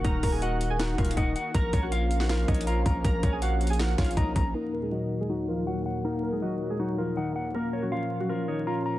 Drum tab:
HH |x-----o-----x-----x-----x-----x-x-x-x-----x-----|x-----x-----x-----x-----x-----x-x-x-x-----x-----|x-----x-----x-----x-x-x-x-----x-x-x-x-----x-----|------------------------------------------------|
SD |------------------------o-----------------------|---------------------o--o-----------------------|------------------------o-----o-----------------|------------------------------------------------|
BD |o-----o-----------------------o-----o-----------|o-----o-----------------------o-----------o-----|o-----o-----------------------o-----o-----o-----|------------------------------------------------|

HH |------------------------------------------------|------------------------------------------------|
SD |------------------------------------------------|------------------------------------------------|
BD |------------------------------------------------|------------------------------------------------|